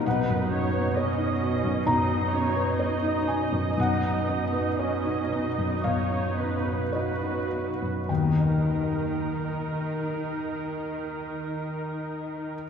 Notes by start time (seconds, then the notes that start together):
Already playing: B2 B3 C#4
0.02 D#4
0.06 B1 B2 D#4 B4 F#5
0.30 F#2
0.51 C#4 C#5
0.73 B4
0.96 C#4 C#5 D#5
1.18 D#4
1.42 B3
1.64 F#2
1.86 B1 D#4 D#5 A#5
2.09 B3
2.33 C#4 C#5
2.56 B4
2.79 C#5 D#5
3.02 D#4
3.28 B3 G#5
3.52 F#2
3.77 B1 B2 D#4 F#5
4.04 B3
4.29 C#4
4.53 B4
4.79 C#4 C#5 D#5
5.05 D#4
5.30 B3 D#4
5.58 F#2
5.84 B1 C#5 F5
6.12 B3
6.38 C#4 B4
6.65 B4
6.92 F#4 B4 C#5 D#5
7.21 D#4
7.51 B3
7.82 F#2
8.09 D#2 D#3 D#4 A#4 G5
8.15 D#3 A#3
8.23 A#3 D#4
8.29 D#4 D#5
8.39 D#5